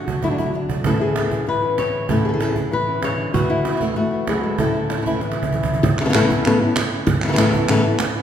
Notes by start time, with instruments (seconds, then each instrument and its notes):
Already playing: nylon-string guitar D3 F#4
0.06 nylon-string guitar A3 D4 F#4, cajon bass
0.22 nylon-string guitar D3 F#3 A3 D4 E4 F#4, cajon bass
0.31 nylon-string guitar D4
0.38 nylon-string guitar A3 D4 E4 F#4, cajon bass
0.54 nylon-string guitar D4, muted nylon-string guitar stroke
0.69 nylon-string guitar A3 D4 F#4, cajon bass
0.84 nylon-string guitar A2 E3 B3 C#4 E4 A4, cajon bass
1.00 nylon-string guitar B3 C#4 E4 G#4
1.15 nylon-string guitar E3 B3 C#4 E4 A4, cajon slap
1.30 nylon-string guitar B3 C#4 E4, cajon bass
1.46 nylon-string guitar E3 B4, muted nylon-string guitar stroke
1.62 nylon-string guitar B3 C#4 E4
1.78 nylon-string guitar C#5, cajon slap
2.08 nylon-string guitar A2 E3 B3 C#4 E4 A4, cajon bass
2.24 nylon-string guitar B3 C#4 E4 G#4
2.29 nylon-string guitar A4
2.34 nylon-string guitar G#4
2.40 nylon-string guitar E3 B3 C#4 E4 A4, cajon slap
2.56 nylon-string guitar B3 C#4 E4, cajon bass
2.71 nylon-string guitar E3 B4, muted nylon-string guitar stroke
2.87 nylon-string guitar B3 C#4 E4
3.02 nylon-string guitar C#3 C#5, cajon slap
3.18 nylon-string guitar D3
3.33 nylon-string guitar E2 A2 E3 A3 B3 E4 F#4, cajon bass
3.49 nylon-string guitar E3 A3 B3 E4
3.65 nylon-string guitar A2 E3 A3 B3 C#4 E4, cajon slap
3.72 nylon-string guitar A2 E3 A3 B3 E4
3.76 nylon-string guitar A2 E3 A3 B3 E4
3.81 nylon-string guitar E2 A2 E3 A3 B3 E4, cajon bass
3.96 nylon-string guitar A3 F#4, muted nylon-string guitar stroke
4.11 nylon-string guitar E3 A3 B3 E4
4.27 nylon-string guitar E3 F#3 A3 B3 E4 G#4, cajon bass, cajon slap
4.43 nylon-string guitar G#3 A4
4.58 nylon-string guitar A2 E3 A3 C#4 E4 A4, cajon bass
4.74 nylon-string guitar A3 C#4 E4, cajon slap
4.89 nylon-string guitar A3 C#4 E4, cajon slap
4.97 nylon-string guitar E3 A3 C#4 E4
5.01 nylon-string guitar E3 A3 C#4 E4
5.06 nylon-string guitar A2 E3 A3 C#4 E4, cajon bass
5.20 nylon-string guitar E3, muted nylon-string guitar stroke, cajon slap
5.32 cajon slap
5.36 nylon-string guitar A3 C#4 E4
5.43 cajon bass
5.52 nylon-string guitar E3 A3 C#4 E4, cajon bass
5.63 cajon bass
5.73 cajon bass
5.83 muted nylon-string guitar stroke, cajon bass
5.98 nylon-string guitar C#3 E3 B3 C#4 E4 A4, cajon slap, clap
6.04 nylon-string guitar C#3 E3 B3 C#4 E4 A4
6.09 nylon-string guitar C#3 E3 B3 C#4 E4 A4
6.14 nylon-string guitar A2 C#3 E3 B3 C#4 E4 A4, cajon slap, clap
6.29 nylon-string guitar E3 B3 C#4 A4, cajon bass
6.45 nylon-string guitar A2 C#3 E3 B3 C#4 E4 A4, clap
6.61 nylon-string guitar E3 B3 C#4 E4 A4
6.76 muted nylon-string guitar stroke, cajon slap, clap
6.91 nylon-string guitar B3 C#4 E4
7.07 muted nylon-string guitar stroke, cajon bass
7.22 nylon-string guitar C#3 E3 B3 C#4 E4 A4, cajon slap, clap
7.28 nylon-string guitar C#3 E3 B3 C#4 E4 A4
7.32 nylon-string guitar C#3 E3 B3 C#4 E4 A4
7.37 nylon-string guitar A2 C#3 E3 B3 C#4 E4 A4, cajon slap, clap
7.52 nylon-string guitar E3 B3 C#4 A4, cajon bass
7.68 nylon-string guitar A2 C#3 E3 B3 C#4 E4 A4, clap
7.84 nylon-string guitar E3 B3 C#4 E4 A4
7.99 muted nylon-string guitar stroke, cajon slap, clap
8.15 nylon-string guitar B3 C#4 E4